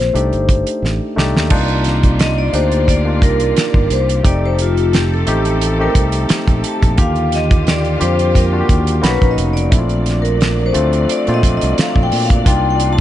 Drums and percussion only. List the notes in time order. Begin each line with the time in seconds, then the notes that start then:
0.01 snare
0.15 closed hi-hat
0.33 closed hi-hat
0.49 kick, closed hi-hat
0.67 closed hi-hat
0.85 snare
1.18 snare
1.37 snare
1.50 kick, crash
1.68 closed hi-hat
1.84 snare, closed hi-hat
2.03 kick, closed hi-hat
2.19 snare, closed hi-hat
2.54 closed hi-hat
2.72 closed hi-hat
2.88 kick, closed hi-hat
3.22 kick, closed hi-hat
3.40 closed hi-hat
3.56 snare, closed hi-hat
3.74 kick
3.90 closed hi-hat
4.09 closed hi-hat
4.25 kick, closed hi-hat
4.59 closed hi-hat
4.77 closed hi-hat
4.93 snare, closed hi-hat
5.27 closed hi-hat
5.45 closed hi-hat
5.61 closed hi-hat
5.95 kick, closed hi-hat
6.12 closed hi-hat
6.29 snare, closed hi-hat
6.48 kick, closed hi-hat
6.64 closed hi-hat
6.82 kick, closed hi-hat
6.98 kick, closed hi-hat
7.15 closed hi-hat
7.32 snare, closed hi-hat
7.51 kick, closed hi-hat
7.67 snare, closed hi-hat
7.85 closed hi-hat
8.01 closed hi-hat
8.19 closed hi-hat
8.35 kick, closed hi-hat
8.69 kick, closed hi-hat
8.87 closed hi-hat
9.04 snare, closed hi-hat
9.22 kick, closed hi-hat
9.38 closed hi-hat
9.57 closed hi-hat
9.72 kick, closed hi-hat
9.89 closed hi-hat
10.06 snare, closed hi-hat
10.25 closed hi-hat
10.41 snare, closed hi-hat
10.74 closed hi-hat
10.93 closed hi-hat
11.09 closed hi-hat
11.27 closed hi-hat
11.43 kick, closed hi-hat
11.61 closed hi-hat
11.78 snare, closed hi-hat
11.96 kick
12.12 open hi-hat
12.30 kick, closed hi-hat
12.46 kick, closed hi-hat
12.80 closed hi-hat